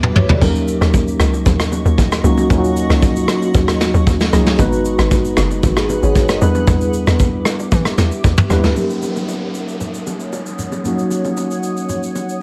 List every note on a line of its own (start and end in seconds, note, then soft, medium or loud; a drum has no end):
0.00 0.17 E2 loud
0.00 0.43 G3 medium
0.00 0.43 B3 medium
0.00 0.44 D4 medium
0.00 0.43 E4 medium
0.00 0.39 G4 medium
0.00 0.04 B4 loud
0.00 0.15 B4 medium
0.00 0.39 E5 medium
0.00 0.39 D6 medium
0.00 mid tom medium
0.04 0.15 F#4 medium
0.15 0.41 D2 loud
0.15 0.29 G4 medium
0.15 0.29 C#5 medium
0.15 mid tom loud
0.15 low conga medium
0.29 0.54 A4 medium
0.29 0.54 D5 medium
0.29 floor tom loud
0.29 low bongo medium
0.41 0.80 D#2 loud
0.41 1.25 F#3 medium
0.41 1.25 A#3 medium
0.41 1.25 C#4 medium
0.41 1.26 D#4 medium
0.41 4.55 F#4 medium
0.41 1.26 A#4 medium
0.41 4.55 D#5 medium
0.41 4.55 C#6 loud
0.41 kick loud
0.41 splash medium
0.41 low conga medium
0.55 shaker medium
0.68 shaker medium
0.81 1.18 D#2 loud
0.81 cross-stick medium
0.81 shaker soft
0.94 kick loud
0.94 high bongo medium
0.94 shaker medium
1.08 shaker medium
1.20 1.45 C#2 loud
1.20 cross-stick loud
1.20 shaker medium
1.33 high bongo medium
1.33 shaker medium
1.46 1.84 D#2 loud
1.46 kick loud
1.46 low conga medium
1.46 shaker medium
1.60 cross-stick loud
1.60 shaker medium
1.72 low bongo medium
1.72 shaker medium
1.85 2.23 D#2 medium
1.85 shaker medium
1.98 kick loud
1.98 high bongo medium
1.98 shaker medium
2.12 cross-stick medium
2.12 shaker medium
2.24 2.49 C#2 loud
2.24 2.45 F#3 medium
2.24 2.45 A#3 medium
2.24 2.45 C#4 medium
2.24 2.46 D#4 medium
2.24 2.46 F#4 loud
2.24 low conga medium
2.24 shaker medium
2.38 low bongo medium
2.38 shaker medium
2.50 2.88 D#2 loud
2.50 3.34 F#3 medium
2.50 3.34 A#3 medium
2.50 3.34 C#4 medium
2.50 3.34 D#4 medium
2.50 2.57 F4 medium
2.50 kick loud
2.50 low conga medium
2.50 shaker medium
2.58 3.38 F#4 loud
2.64 shaker medium
2.77 shaker medium
2.90 3.27 C#2 loud
2.90 cross-stick medium
2.90 shaker soft
3.02 kick loud
3.02 high bongo medium
3.02 shaker medium
3.16 shaker medium
3.28 cross-stick loud
3.28 shaker medium
3.42 high bongo medium
3.42 shaker medium
3.54 3.93 D#2 loud
3.54 kick loud
3.54 low conga medium
3.54 shaker medium
3.68 cross-stick loud
3.68 shaker medium
3.81 snare medium
3.81 low bongo medium
3.81 shaker medium
3.94 4.06 D#2 loud
3.94 shaker medium
4.07 4.32 D#2 medium
4.07 kick loud
4.07 high bongo medium
4.07 shaker medium
4.20 snare medium
4.20 shaker medium
4.32 4.58 C#2 loud
4.32 4.54 F#3 medium
4.32 4.54 A#3 medium
4.32 4.54 C#4 medium
4.32 4.54 D#4 medium
4.32 4.55 G#4 loud
4.32 cross-stick medium
4.32 low conga medium
4.32 shaker medium
4.46 snare medium
4.46 low bongo medium
4.46 shaker medium
4.58 4.97 G#1 loud
4.58 5.42 G#3 medium
4.58 5.43 B3 medium
4.58 5.43 D#4 medium
4.58 5.43 F#4 medium
4.58 6.40 G#4 medium
4.58 5.43 B4 loud
4.58 6.40 F#5 medium
4.58 6.40 B5 medium
4.58 kick loud
4.58 low conga medium
4.58 shaker medium
4.73 shaker medium
4.85 shaker medium
4.99 5.36 G#1 loud
4.99 cross-stick medium
4.99 shaker medium
5.11 kick loud
5.11 high bongo medium
5.11 shaker medium
5.25 shaker medium
5.37 5.62 F#1 loud
5.37 cross-stick loud
5.37 shaker medium
5.51 high bongo medium
5.51 shaker medium
5.63 6.01 G#1 loud
5.63 kick loud
5.63 low conga medium
5.63 shaker medium
5.77 5.89 D#4 medium
5.77 5.89 G#4 medium
5.77 cross-stick loud
5.77 shaker medium
5.89 6.03 F#4 medium
5.89 6.02 B4 medium
5.89 low bongo medium
5.89 shaker medium
6.03 6.40 G#1 medium
6.03 6.28 G#4 medium
6.03 6.28 C#5 medium
6.03 shaker medium
6.15 kick loud
6.15 high bongo medium
6.15 shaker medium
6.29 6.54 A#4 medium
6.29 6.54 D#5 medium
6.29 cross-stick medium
6.29 shaker medium
6.41 6.67 E2 loud
6.41 7.25 G3 medium
6.41 7.25 B3 medium
6.41 7.25 D4 medium
6.41 7.26 E4 medium
6.41 8.74 G4 medium
6.41 7.26 B4 loud
6.41 8.74 E5 medium
6.41 8.74 D6 medium
6.41 low conga medium
6.41 shaker medium
6.55 low bongo medium
6.55 shaker medium
6.67 7.06 E2 loud
6.67 kick loud
6.67 low conga medium
6.67 shaker medium
6.81 shaker medium
6.93 shaker medium
7.07 7.44 E2 medium
7.07 cross-stick medium
7.07 shaker medium
7.19 kick loud
7.19 high bongo medium
7.19 shaker medium
7.45 cross-stick loud
7.45 shaker medium
7.59 high bongo medium
7.59 shaker medium
7.72 7.85 E3 loud
7.72 kick loud
7.72 low conga medium
7.72 shaker medium
7.85 cross-stick medium
7.85 shaker medium
7.98 8.11 E2 medium
7.98 snare medium
7.98 low bongo medium
7.98 shaker medium
8.11 shaker soft
8.24 8.37 E2 loud
8.24 kick loud
8.24 high bongo medium
8.24 shaker medium
8.38 mid tom loud
8.38 shaker medium
8.49 8.63 D#2 loud
8.49 8.71 G3 medium
8.49 8.71 B3 medium
8.49 8.71 D4 medium
8.49 8.72 E4 medium
8.49 8.72 B4 loud
8.49 cross-stick medium
8.49 low conga medium
8.49 shaker medium
8.63 8.76 D2 medium
8.63 snare medium
8.63 low bongo medium
8.63 shaker medium
8.75 10.80 F#3 medium
8.75 10.81 A#3 medium
8.75 10.81 C#4 medium
8.75 10.82 D#4 medium
8.75 12.42 C#5 medium
8.75 12.42 F#5 medium
8.75 12.42 D#6 medium
8.75 downlifter medium
8.75 low conga medium
8.75 shaker medium
8.79 10.82 A#4 medium
8.90 shaker soft
9.02 low bongo soft
9.02 shaker medium
9.16 low bongo medium
9.16 shaker soft
9.28 high bongo medium
9.28 shaker medium
9.54 shaker medium
9.68 shaker soft
9.81 low conga medium
9.81 shaker medium
9.94 shaker medium
10.07 low bongo medium
10.07 shaker medium
10.20 shaker soft
10.33 high bongo medium
10.33 shaker medium
10.46 shaker soft
10.59 low conga medium
10.59 shaker medium
10.72 low bongo medium
10.72 shaker soft
10.83 12.42 F#3 medium
10.83 12.42 A#3 medium
10.83 12.42 C#4 medium
10.83 12.42 D#4 medium
10.83 low conga medium
10.83 shaker medium
10.88 12.40 F#4 medium
10.99 shaker soft
11.11 low bongo soft
11.11 shaker medium
11.25 low bongo medium
11.25 shaker soft
11.37 high bongo medium
11.37 shaker medium
11.51 shaker medium
11.63 shaker medium
11.77 shaker soft
11.89 low conga medium
11.89 shaker medium
12.03 shaker medium
12.15 low bongo medium
12.15 shaker medium
12.29 shaker soft